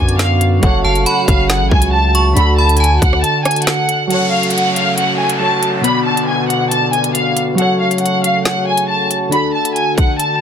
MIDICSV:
0, 0, Header, 1, 8, 480
1, 0, Start_track
1, 0, Key_signature, 3, "minor"
1, 0, Tempo, 434783
1, 693, Time_signature, 4, 2, 24, 8
1, 11493, End_track
2, 0, Start_track
2, 0, Title_t, "Synth bell"
2, 0, Program_c, 0, 98
2, 0, Note_on_c, 0, 86, 82
2, 650, Note_off_c, 0, 86, 0
2, 933, Note_on_c, 0, 81, 77
2, 1161, Note_off_c, 0, 81, 0
2, 1172, Note_on_c, 0, 83, 87
2, 1624, Note_off_c, 0, 83, 0
2, 2372, Note_on_c, 0, 85, 85
2, 2601, Note_off_c, 0, 85, 0
2, 2853, Note_on_c, 0, 83, 85
2, 3081, Note_off_c, 0, 83, 0
2, 3092, Note_on_c, 0, 81, 81
2, 4009, Note_off_c, 0, 81, 0
2, 11493, End_track
3, 0, Start_track
3, 0, Title_t, "Violin section"
3, 0, Program_c, 1, 48
3, 0, Note_on_c, 1, 80, 82
3, 190, Note_off_c, 1, 80, 0
3, 213, Note_on_c, 1, 77, 91
3, 428, Note_off_c, 1, 77, 0
3, 693, Note_on_c, 1, 78, 86
3, 908, Note_off_c, 1, 78, 0
3, 933, Note_on_c, 1, 77, 73
3, 1148, Note_off_c, 1, 77, 0
3, 1176, Note_on_c, 1, 78, 83
3, 1390, Note_off_c, 1, 78, 0
3, 1412, Note_on_c, 1, 77, 90
3, 1628, Note_off_c, 1, 77, 0
3, 1655, Note_on_c, 1, 78, 92
3, 1870, Note_off_c, 1, 78, 0
3, 1893, Note_on_c, 1, 80, 90
3, 2109, Note_off_c, 1, 80, 0
3, 2131, Note_on_c, 1, 81, 95
3, 2347, Note_off_c, 1, 81, 0
3, 2614, Note_on_c, 1, 83, 88
3, 2829, Note_off_c, 1, 83, 0
3, 2855, Note_on_c, 1, 81, 78
3, 3070, Note_off_c, 1, 81, 0
3, 3089, Note_on_c, 1, 80, 87
3, 3306, Note_off_c, 1, 80, 0
3, 3335, Note_on_c, 1, 78, 89
3, 3549, Note_off_c, 1, 78, 0
3, 3572, Note_on_c, 1, 81, 85
3, 3788, Note_off_c, 1, 81, 0
3, 3812, Note_on_c, 1, 80, 91
3, 4028, Note_off_c, 1, 80, 0
3, 4049, Note_on_c, 1, 78, 85
3, 4502, Note_off_c, 1, 78, 0
3, 4532, Note_on_c, 1, 78, 83
3, 4748, Note_off_c, 1, 78, 0
3, 4770, Note_on_c, 1, 77, 79
3, 4986, Note_off_c, 1, 77, 0
3, 5014, Note_on_c, 1, 78, 80
3, 5229, Note_off_c, 1, 78, 0
3, 5255, Note_on_c, 1, 77, 93
3, 5469, Note_off_c, 1, 77, 0
3, 5495, Note_on_c, 1, 78, 83
3, 5709, Note_off_c, 1, 78, 0
3, 5735, Note_on_c, 1, 80, 71
3, 5949, Note_off_c, 1, 80, 0
3, 5971, Note_on_c, 1, 81, 89
3, 6187, Note_off_c, 1, 81, 0
3, 6455, Note_on_c, 1, 83, 88
3, 6669, Note_off_c, 1, 83, 0
3, 6694, Note_on_c, 1, 81, 77
3, 6909, Note_off_c, 1, 81, 0
3, 6934, Note_on_c, 1, 80, 80
3, 7149, Note_off_c, 1, 80, 0
3, 7170, Note_on_c, 1, 78, 78
3, 7387, Note_off_c, 1, 78, 0
3, 7414, Note_on_c, 1, 81, 87
3, 7629, Note_off_c, 1, 81, 0
3, 7653, Note_on_c, 1, 80, 79
3, 7869, Note_off_c, 1, 80, 0
3, 7894, Note_on_c, 1, 77, 86
3, 8109, Note_off_c, 1, 77, 0
3, 8374, Note_on_c, 1, 78, 81
3, 8589, Note_off_c, 1, 78, 0
3, 8614, Note_on_c, 1, 77, 69
3, 8829, Note_off_c, 1, 77, 0
3, 8855, Note_on_c, 1, 78, 79
3, 9069, Note_off_c, 1, 78, 0
3, 9092, Note_on_c, 1, 77, 84
3, 9308, Note_off_c, 1, 77, 0
3, 9336, Note_on_c, 1, 78, 88
3, 9550, Note_off_c, 1, 78, 0
3, 9576, Note_on_c, 1, 80, 85
3, 9790, Note_off_c, 1, 80, 0
3, 9815, Note_on_c, 1, 81, 92
3, 10029, Note_off_c, 1, 81, 0
3, 10297, Note_on_c, 1, 83, 88
3, 10510, Note_off_c, 1, 83, 0
3, 10535, Note_on_c, 1, 81, 74
3, 10750, Note_off_c, 1, 81, 0
3, 10770, Note_on_c, 1, 80, 83
3, 10987, Note_off_c, 1, 80, 0
3, 11016, Note_on_c, 1, 78, 81
3, 11230, Note_off_c, 1, 78, 0
3, 11256, Note_on_c, 1, 81, 82
3, 11470, Note_off_c, 1, 81, 0
3, 11493, End_track
4, 0, Start_track
4, 0, Title_t, "Synth keys"
4, 0, Program_c, 2, 88
4, 0, Control_c, 2, 64, 127
4, 0, Note_on_c, 2, 47, 73
4, 0, Note_on_c, 2, 59, 68
4, 0, Note_on_c, 2, 66, 70
4, 0, Note_on_c, 2, 74, 80
4, 637, Note_off_c, 2, 47, 0
4, 649, Note_off_c, 2, 59, 0
4, 657, Note_on_c, 2, 54, 74
4, 662, Note_off_c, 2, 66, 0
4, 674, Note_off_c, 2, 74, 0
4, 681, Note_on_c, 2, 66, 71
4, 704, Note_on_c, 2, 69, 68
4, 707, Control_c, 2, 64, 0
4, 728, Note_on_c, 2, 73, 80
4, 906, Control_c, 2, 64, 127
4, 2556, Note_off_c, 2, 54, 0
4, 2568, Note_off_c, 2, 66, 0
4, 2576, Note_on_c, 2, 50, 75
4, 2581, Note_off_c, 2, 69, 0
4, 2593, Note_off_c, 2, 73, 0
4, 2600, Note_on_c, 2, 62, 67
4, 2624, Note_on_c, 2, 66, 69
4, 2629, Control_c, 2, 64, 0
4, 2648, Note_on_c, 2, 69, 75
4, 2826, Control_c, 2, 64, 127
4, 4476, Note_off_c, 2, 50, 0
4, 4488, Note_off_c, 2, 62, 0
4, 4498, Note_on_c, 2, 54, 67
4, 4500, Note_off_c, 2, 66, 0
4, 4513, Note_off_c, 2, 69, 0
4, 4522, Note_on_c, 2, 66, 61
4, 4545, Control_c, 2, 64, 0
4, 4545, Note_on_c, 2, 69, 59
4, 4570, Note_on_c, 2, 73, 78
4, 4775, Control_c, 2, 64, 127
4, 5927, Note_off_c, 2, 54, 0
4, 5939, Note_off_c, 2, 66, 0
4, 5951, Note_off_c, 2, 69, 0
4, 5955, Note_on_c, 2, 54, 49
4, 5963, Note_off_c, 2, 73, 0
4, 5967, Note_on_c, 2, 66, 48
4, 5979, Note_on_c, 2, 69, 44
4, 5991, Note_on_c, 2, 73, 57
4, 6417, Note_on_c, 2, 47, 67
4, 6441, Note_on_c, 2, 59, 65
4, 6444, Note_off_c, 2, 54, 0
4, 6450, Note_off_c, 2, 66, 0
4, 6456, Note_off_c, 2, 69, 0
4, 6462, Note_off_c, 2, 73, 0
4, 6465, Note_on_c, 2, 66, 64
4, 6466, Control_c, 2, 64, 0
4, 6489, Note_on_c, 2, 74, 75
4, 6637, Control_c, 2, 64, 127
4, 8317, Note_off_c, 2, 47, 0
4, 8329, Note_off_c, 2, 59, 0
4, 8337, Note_on_c, 2, 54, 72
4, 8341, Note_off_c, 2, 66, 0
4, 8353, Note_off_c, 2, 74, 0
4, 8360, Note_on_c, 2, 66, 66
4, 8385, Note_on_c, 2, 69, 63
4, 8390, Control_c, 2, 64, 0
4, 8408, Note_on_c, 2, 73, 79
4, 8595, Control_c, 2, 64, 127
4, 10236, Note_off_c, 2, 54, 0
4, 10248, Note_off_c, 2, 66, 0
4, 10257, Note_on_c, 2, 50, 74
4, 10261, Note_off_c, 2, 69, 0
4, 10273, Note_off_c, 2, 73, 0
4, 10281, Note_on_c, 2, 62, 61
4, 10305, Note_on_c, 2, 66, 64
4, 10310, Control_c, 2, 64, 0
4, 10328, Note_on_c, 2, 69, 73
4, 10467, Control_c, 2, 64, 127
4, 11493, Note_off_c, 2, 50, 0
4, 11493, Note_off_c, 2, 62, 0
4, 11493, Note_off_c, 2, 66, 0
4, 11493, Note_off_c, 2, 69, 0
4, 11493, End_track
5, 0, Start_track
5, 0, Title_t, "Brass ensemble"
5, 0, Program_c, 3, 61
5, 0, Note_on_c, 3, 50, 81
5, 0, Note_on_c, 3, 59, 77
5, 0, Note_on_c, 3, 66, 92
5, 675, Note_off_c, 3, 50, 0
5, 675, Note_off_c, 3, 59, 0
5, 693, Note_on_c, 3, 49, 83
5, 693, Note_on_c, 3, 57, 75
5, 2594, Note_off_c, 3, 49, 0
5, 2614, Note_on_c, 3, 50, 83
5, 4344, Note_off_c, 3, 50, 0
5, 4344, Note_off_c, 3, 57, 0
5, 4344, Note_off_c, 3, 66, 0
5, 4532, Note_on_c, 3, 66, 85
5, 4533, Note_on_c, 3, 49, 76
5, 4533, Note_on_c, 3, 57, 69
5, 6434, Note_off_c, 3, 49, 0
5, 6434, Note_off_c, 3, 57, 0
5, 6453, Note_on_c, 3, 50, 78
5, 6453, Note_on_c, 3, 59, 71
5, 8354, Note_off_c, 3, 50, 0
5, 8354, Note_off_c, 3, 59, 0
5, 8374, Note_on_c, 3, 57, 72
5, 8375, Note_on_c, 3, 49, 79
5, 10275, Note_off_c, 3, 49, 0
5, 10293, Note_on_c, 3, 50, 78
5, 11493, Note_off_c, 3, 50, 0
5, 11493, Note_off_c, 3, 57, 0
5, 11493, Note_off_c, 3, 66, 0
5, 11493, End_track
6, 0, Start_track
6, 0, Title_t, "808-style bass"
6, 0, Program_c, 4, 38
6, 0, Note_on_c, 4, 42, 103
6, 665, Note_off_c, 4, 42, 0
6, 693, Note_on_c, 4, 30, 120
6, 924, Note_off_c, 4, 30, 0
6, 933, Note_on_c, 4, 30, 100
6, 1164, Note_off_c, 4, 30, 0
6, 1413, Note_on_c, 4, 30, 111
6, 1773, Note_on_c, 4, 33, 102
6, 1789, Note_off_c, 4, 30, 0
6, 1887, Note_off_c, 4, 33, 0
6, 1893, Note_on_c, 4, 37, 106
6, 2584, Note_off_c, 4, 37, 0
6, 2613, Note_on_c, 4, 38, 122
6, 3305, Note_off_c, 4, 38, 0
6, 3334, Note_on_c, 4, 38, 110
6, 3564, Note_off_c, 4, 38, 0
6, 11493, End_track
7, 0, Start_track
7, 0, Title_t, "Downlifter"
7, 0, Program_c, 5, 103
7, 4533, Note_on_c, 5, 60, 83
7, 8373, Note_off_c, 5, 60, 0
7, 11493, End_track
8, 0, Start_track
8, 0, Title_t, "Drums"
8, 94, Note_on_c, 9, 42, 73
8, 205, Note_off_c, 9, 42, 0
8, 213, Note_on_c, 9, 38, 119
8, 213, Note_on_c, 9, 42, 86
8, 324, Note_off_c, 9, 38, 0
8, 324, Note_off_c, 9, 42, 0
8, 453, Note_on_c, 9, 42, 90
8, 563, Note_off_c, 9, 42, 0
8, 693, Note_on_c, 9, 42, 81
8, 694, Note_on_c, 9, 36, 109
8, 803, Note_off_c, 9, 42, 0
8, 804, Note_off_c, 9, 36, 0
8, 1054, Note_on_c, 9, 42, 48
8, 1164, Note_off_c, 9, 42, 0
8, 1173, Note_on_c, 9, 42, 80
8, 1284, Note_off_c, 9, 42, 0
8, 1413, Note_on_c, 9, 36, 99
8, 1418, Note_on_c, 9, 42, 87
8, 1523, Note_off_c, 9, 36, 0
8, 1529, Note_off_c, 9, 42, 0
8, 1652, Note_on_c, 9, 38, 122
8, 1654, Note_on_c, 9, 42, 89
8, 1762, Note_off_c, 9, 38, 0
8, 1764, Note_off_c, 9, 42, 0
8, 1893, Note_on_c, 9, 36, 95
8, 2004, Note_off_c, 9, 36, 0
8, 2006, Note_on_c, 9, 42, 84
8, 2117, Note_off_c, 9, 42, 0
8, 2371, Note_on_c, 9, 42, 91
8, 2482, Note_off_c, 9, 42, 0
8, 2612, Note_on_c, 9, 42, 80
8, 2722, Note_off_c, 9, 42, 0
8, 2974, Note_on_c, 9, 42, 47
8, 3054, Note_off_c, 9, 42, 0
8, 3054, Note_on_c, 9, 42, 64
8, 3135, Note_off_c, 9, 42, 0
8, 3135, Note_on_c, 9, 42, 78
8, 3245, Note_off_c, 9, 42, 0
8, 3334, Note_on_c, 9, 36, 101
8, 3340, Note_on_c, 9, 42, 85
8, 3444, Note_off_c, 9, 36, 0
8, 3450, Note_off_c, 9, 42, 0
8, 3455, Note_on_c, 9, 37, 72
8, 3566, Note_off_c, 9, 37, 0
8, 3575, Note_on_c, 9, 42, 89
8, 3686, Note_off_c, 9, 42, 0
8, 3813, Note_on_c, 9, 42, 71
8, 3814, Note_on_c, 9, 37, 99
8, 3874, Note_off_c, 9, 42, 0
8, 3874, Note_on_c, 9, 42, 72
8, 3924, Note_off_c, 9, 37, 0
8, 3934, Note_off_c, 9, 42, 0
8, 3934, Note_on_c, 9, 42, 72
8, 3994, Note_off_c, 9, 42, 0
8, 3994, Note_on_c, 9, 42, 71
8, 4053, Note_off_c, 9, 42, 0
8, 4053, Note_on_c, 9, 38, 117
8, 4053, Note_on_c, 9, 42, 83
8, 4163, Note_off_c, 9, 38, 0
8, 4163, Note_off_c, 9, 42, 0
8, 4292, Note_on_c, 9, 42, 85
8, 4403, Note_off_c, 9, 42, 0
8, 4532, Note_on_c, 9, 42, 77
8, 4642, Note_off_c, 9, 42, 0
8, 4893, Note_on_c, 9, 42, 45
8, 4973, Note_off_c, 9, 42, 0
8, 4973, Note_on_c, 9, 42, 60
8, 5053, Note_off_c, 9, 42, 0
8, 5053, Note_on_c, 9, 42, 70
8, 5163, Note_off_c, 9, 42, 0
8, 5258, Note_on_c, 9, 42, 78
8, 5369, Note_off_c, 9, 42, 0
8, 5494, Note_on_c, 9, 42, 81
8, 5604, Note_off_c, 9, 42, 0
8, 5846, Note_on_c, 9, 42, 75
8, 5956, Note_off_c, 9, 42, 0
8, 6211, Note_on_c, 9, 42, 86
8, 6322, Note_off_c, 9, 42, 0
8, 6451, Note_on_c, 9, 42, 76
8, 6561, Note_off_c, 9, 42, 0
8, 6815, Note_on_c, 9, 42, 71
8, 6926, Note_off_c, 9, 42, 0
8, 7178, Note_on_c, 9, 42, 80
8, 7288, Note_off_c, 9, 42, 0
8, 7413, Note_on_c, 9, 42, 84
8, 7524, Note_off_c, 9, 42, 0
8, 7653, Note_on_c, 9, 42, 48
8, 7763, Note_off_c, 9, 42, 0
8, 7773, Note_on_c, 9, 42, 80
8, 7883, Note_off_c, 9, 42, 0
8, 7892, Note_on_c, 9, 42, 79
8, 8003, Note_off_c, 9, 42, 0
8, 8132, Note_on_c, 9, 42, 82
8, 8242, Note_off_c, 9, 42, 0
8, 8371, Note_on_c, 9, 42, 74
8, 8482, Note_off_c, 9, 42, 0
8, 8734, Note_on_c, 9, 42, 44
8, 8813, Note_off_c, 9, 42, 0
8, 8813, Note_on_c, 9, 42, 60
8, 8894, Note_off_c, 9, 42, 0
8, 8894, Note_on_c, 9, 42, 71
8, 9004, Note_off_c, 9, 42, 0
8, 9099, Note_on_c, 9, 42, 78
8, 9210, Note_off_c, 9, 42, 0
8, 9333, Note_on_c, 9, 38, 116
8, 9335, Note_on_c, 9, 42, 82
8, 9444, Note_off_c, 9, 38, 0
8, 9446, Note_off_c, 9, 42, 0
8, 9688, Note_on_c, 9, 42, 75
8, 9798, Note_off_c, 9, 42, 0
8, 10054, Note_on_c, 9, 42, 81
8, 10164, Note_off_c, 9, 42, 0
8, 10294, Note_on_c, 9, 42, 75
8, 10404, Note_off_c, 9, 42, 0
8, 10654, Note_on_c, 9, 42, 73
8, 10765, Note_off_c, 9, 42, 0
8, 10775, Note_on_c, 9, 42, 42
8, 10886, Note_off_c, 9, 42, 0
8, 11014, Note_on_c, 9, 36, 97
8, 11020, Note_on_c, 9, 42, 78
8, 11125, Note_off_c, 9, 36, 0
8, 11131, Note_off_c, 9, 42, 0
8, 11256, Note_on_c, 9, 42, 85
8, 11366, Note_off_c, 9, 42, 0
8, 11493, End_track
0, 0, End_of_file